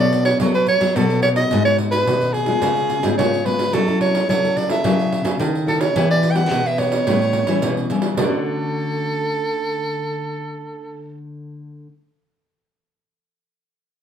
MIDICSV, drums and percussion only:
0, 0, Header, 1, 2, 480
1, 0, Start_track
1, 0, Key_signature, 2, "major"
1, 0, Tempo, 555556
1, 1310, Time_signature, 4, 2, 24, 8
1, 12120, End_track
2, 0, Start_track
2, 0, Title_t, "Pandeiro"
2, 0, Note_on_c, 9, 54, 34
2, 84, Note_off_c, 9, 54, 0
2, 108, Note_on_c, 9, 54, 60
2, 195, Note_off_c, 9, 54, 0
2, 217, Note_on_c, 9, 54, 66
2, 303, Note_off_c, 9, 54, 0
2, 343, Note_on_c, 9, 54, 81
2, 429, Note_off_c, 9, 54, 0
2, 467, Note_on_c, 9, 54, 34
2, 553, Note_off_c, 9, 54, 0
2, 575, Note_on_c, 9, 54, 53
2, 662, Note_off_c, 9, 54, 0
2, 697, Note_on_c, 9, 54, 67
2, 783, Note_off_c, 9, 54, 0
2, 828, Note_on_c, 9, 54, 78
2, 914, Note_off_c, 9, 54, 0
2, 947, Note_on_c, 9, 54, 35
2, 1034, Note_off_c, 9, 54, 0
2, 1057, Note_on_c, 9, 54, 54
2, 1143, Note_off_c, 9, 54, 0
2, 1175, Note_on_c, 9, 54, 65
2, 1262, Note_off_c, 9, 54, 0
2, 1304, Note_on_c, 9, 54, 71
2, 1390, Note_off_c, 9, 54, 0
2, 1429, Note_on_c, 9, 54, 34
2, 1515, Note_off_c, 9, 54, 0
2, 1541, Note_on_c, 9, 54, 57
2, 1627, Note_off_c, 9, 54, 0
2, 1661, Note_on_c, 9, 54, 69
2, 1748, Note_off_c, 9, 54, 0
2, 1792, Note_on_c, 9, 54, 79
2, 1878, Note_off_c, 9, 54, 0
2, 1909, Note_on_c, 9, 54, 35
2, 1995, Note_off_c, 9, 54, 0
2, 2023, Note_on_c, 9, 54, 55
2, 2109, Note_off_c, 9, 54, 0
2, 2127, Note_on_c, 9, 54, 61
2, 2213, Note_off_c, 9, 54, 0
2, 2261, Note_on_c, 9, 54, 81
2, 2347, Note_off_c, 9, 54, 0
2, 2384, Note_on_c, 9, 54, 32
2, 2471, Note_off_c, 9, 54, 0
2, 2501, Note_on_c, 9, 54, 56
2, 2587, Note_off_c, 9, 54, 0
2, 2619, Note_on_c, 9, 54, 73
2, 2706, Note_off_c, 9, 54, 0
2, 2755, Note_on_c, 9, 54, 78
2, 2841, Note_off_c, 9, 54, 0
2, 2881, Note_on_c, 9, 54, 35
2, 2967, Note_off_c, 9, 54, 0
2, 2988, Note_on_c, 9, 54, 54
2, 3075, Note_off_c, 9, 54, 0
2, 3103, Note_on_c, 9, 54, 67
2, 3190, Note_off_c, 9, 54, 0
2, 3224, Note_on_c, 9, 54, 71
2, 3311, Note_off_c, 9, 54, 0
2, 3351, Note_on_c, 9, 54, 34
2, 3438, Note_off_c, 9, 54, 0
2, 3462, Note_on_c, 9, 54, 58
2, 3549, Note_off_c, 9, 54, 0
2, 3584, Note_on_c, 9, 54, 67
2, 3670, Note_off_c, 9, 54, 0
2, 3718, Note_on_c, 9, 54, 78
2, 3805, Note_off_c, 9, 54, 0
2, 3839, Note_on_c, 9, 54, 36
2, 3926, Note_off_c, 9, 54, 0
2, 3946, Note_on_c, 9, 54, 58
2, 4032, Note_off_c, 9, 54, 0
2, 4057, Note_on_c, 9, 54, 69
2, 4143, Note_off_c, 9, 54, 0
2, 4187, Note_on_c, 9, 54, 84
2, 4273, Note_off_c, 9, 54, 0
2, 4315, Note_on_c, 9, 54, 33
2, 4402, Note_off_c, 9, 54, 0
2, 4427, Note_on_c, 9, 54, 57
2, 4513, Note_off_c, 9, 54, 0
2, 4536, Note_on_c, 9, 54, 72
2, 4622, Note_off_c, 9, 54, 0
2, 4670, Note_on_c, 9, 54, 73
2, 4756, Note_off_c, 9, 54, 0
2, 4797, Note_on_c, 9, 54, 35
2, 4883, Note_off_c, 9, 54, 0
2, 4910, Note_on_c, 9, 54, 56
2, 4996, Note_off_c, 9, 54, 0
2, 5017, Note_on_c, 9, 54, 69
2, 5104, Note_off_c, 9, 54, 0
2, 5151, Note_on_c, 9, 54, 78
2, 5237, Note_off_c, 9, 54, 0
2, 5275, Note_on_c, 9, 54, 35
2, 5361, Note_off_c, 9, 54, 0
2, 5382, Note_on_c, 9, 54, 55
2, 5468, Note_off_c, 9, 54, 0
2, 5492, Note_on_c, 9, 54, 67
2, 5578, Note_off_c, 9, 54, 0
2, 5627, Note_on_c, 9, 54, 76
2, 5714, Note_off_c, 9, 54, 0
2, 5754, Note_on_c, 9, 54, 33
2, 5840, Note_off_c, 9, 54, 0
2, 5859, Note_on_c, 9, 54, 60
2, 5945, Note_off_c, 9, 54, 0
2, 5977, Note_on_c, 9, 54, 66
2, 6064, Note_off_c, 9, 54, 0
2, 6107, Note_on_c, 9, 54, 81
2, 6194, Note_off_c, 9, 54, 0
2, 6233, Note_on_c, 9, 54, 33
2, 6319, Note_off_c, 9, 54, 0
2, 6333, Note_on_c, 9, 54, 60
2, 6420, Note_off_c, 9, 54, 0
2, 6454, Note_on_c, 9, 54, 68
2, 6540, Note_off_c, 9, 54, 0
2, 6585, Note_on_c, 9, 54, 80
2, 6671, Note_off_c, 9, 54, 0
2, 6714, Note_on_c, 9, 54, 34
2, 6800, Note_off_c, 9, 54, 0
2, 6823, Note_on_c, 9, 54, 55
2, 6910, Note_off_c, 9, 54, 0
2, 6928, Note_on_c, 9, 54, 65
2, 7014, Note_off_c, 9, 54, 0
2, 7062, Note_on_c, 9, 54, 92
2, 7149, Note_off_c, 9, 54, 0
2, 12120, End_track
0, 0, End_of_file